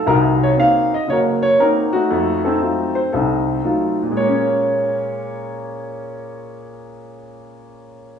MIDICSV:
0, 0, Header, 1, 2, 480
1, 0, Start_track
1, 0, Key_signature, -5, "minor"
1, 0, Tempo, 512821
1, 47, Time_signature, 4, 2, 24, 8
1, 7668, End_track
2, 0, Start_track
2, 0, Title_t, "Upright piano"
2, 0, Program_c, 0, 0
2, 57, Note_on_c, 0, 48, 67
2, 60, Note_on_c, 0, 36, 72
2, 68, Note_on_c, 0, 70, 89
2, 82, Note_on_c, 0, 66, 55
2, 84, Note_on_c, 0, 63, 62
2, 139, Note_off_c, 0, 70, 0
2, 406, Note_on_c, 0, 73, 77
2, 453, Note_off_c, 0, 73, 0
2, 471, Note_off_c, 0, 48, 0
2, 472, Note_off_c, 0, 36, 0
2, 521, Note_off_c, 0, 63, 0
2, 522, Note_on_c, 0, 58, 47
2, 532, Note_on_c, 0, 60, 40
2, 535, Note_on_c, 0, 63, 50
2, 557, Note_on_c, 0, 77, 83
2, 864, Note_off_c, 0, 58, 0
2, 869, Note_off_c, 0, 60, 0
2, 871, Note_off_c, 0, 63, 0
2, 876, Note_off_c, 0, 77, 0
2, 881, Note_on_c, 0, 75, 75
2, 988, Note_off_c, 0, 66, 0
2, 1008, Note_on_c, 0, 30, 60
2, 1027, Note_off_c, 0, 75, 0
2, 1027, Note_on_c, 0, 73, 82
2, 1042, Note_on_c, 0, 66, 56
2, 1052, Note_on_c, 0, 70, 60
2, 1098, Note_off_c, 0, 73, 0
2, 1334, Note_on_c, 0, 73, 81
2, 1426, Note_off_c, 0, 30, 0
2, 1485, Note_off_c, 0, 70, 0
2, 1493, Note_on_c, 0, 58, 51
2, 1494, Note_off_c, 0, 73, 0
2, 1496, Note_on_c, 0, 60, 44
2, 1499, Note_on_c, 0, 63, 54
2, 1499, Note_on_c, 0, 70, 77
2, 1571, Note_off_c, 0, 70, 0
2, 1789, Note_off_c, 0, 66, 0
2, 1803, Note_on_c, 0, 66, 84
2, 1809, Note_off_c, 0, 63, 0
2, 1822, Note_on_c, 0, 57, 52
2, 1823, Note_on_c, 0, 63, 56
2, 1830, Note_off_c, 0, 58, 0
2, 1832, Note_off_c, 0, 60, 0
2, 1955, Note_off_c, 0, 57, 0
2, 1969, Note_on_c, 0, 57, 69
2, 1970, Note_on_c, 0, 41, 67
2, 2254, Note_off_c, 0, 66, 0
2, 2288, Note_on_c, 0, 69, 69
2, 2289, Note_off_c, 0, 63, 0
2, 2302, Note_on_c, 0, 60, 58
2, 2303, Note_on_c, 0, 63, 53
2, 2386, Note_off_c, 0, 57, 0
2, 2387, Note_off_c, 0, 41, 0
2, 2432, Note_off_c, 0, 63, 0
2, 2445, Note_on_c, 0, 54, 42
2, 2446, Note_on_c, 0, 63, 44
2, 2448, Note_on_c, 0, 57, 43
2, 2455, Note_on_c, 0, 65, 46
2, 2737, Note_off_c, 0, 69, 0
2, 2763, Note_on_c, 0, 72, 70
2, 2786, Note_off_c, 0, 54, 0
2, 2787, Note_off_c, 0, 57, 0
2, 2787, Note_off_c, 0, 63, 0
2, 2791, Note_off_c, 0, 65, 0
2, 2924, Note_on_c, 0, 69, 64
2, 2929, Note_off_c, 0, 72, 0
2, 2933, Note_off_c, 0, 60, 0
2, 2934, Note_on_c, 0, 36, 63
2, 2947, Note_on_c, 0, 60, 47
2, 2947, Note_on_c, 0, 63, 47
2, 3349, Note_off_c, 0, 36, 0
2, 3393, Note_off_c, 0, 63, 0
2, 3402, Note_on_c, 0, 54, 47
2, 3406, Note_on_c, 0, 57, 44
2, 3407, Note_on_c, 0, 63, 45
2, 3410, Note_on_c, 0, 65, 52
2, 3692, Note_off_c, 0, 69, 0
2, 3744, Note_off_c, 0, 54, 0
2, 3747, Note_off_c, 0, 57, 0
2, 3747, Note_off_c, 0, 63, 0
2, 3748, Note_off_c, 0, 65, 0
2, 3766, Note_on_c, 0, 46, 58
2, 3846, Note_on_c, 0, 56, 57
2, 3860, Note_off_c, 0, 60, 0
2, 3901, Note_on_c, 0, 73, 76
2, 3929, Note_on_c, 0, 58, 56
2, 4006, Note_on_c, 0, 61, 65
2, 7668, Note_off_c, 0, 46, 0
2, 7668, Note_off_c, 0, 56, 0
2, 7668, Note_off_c, 0, 58, 0
2, 7668, Note_off_c, 0, 61, 0
2, 7668, Note_off_c, 0, 73, 0
2, 7668, End_track
0, 0, End_of_file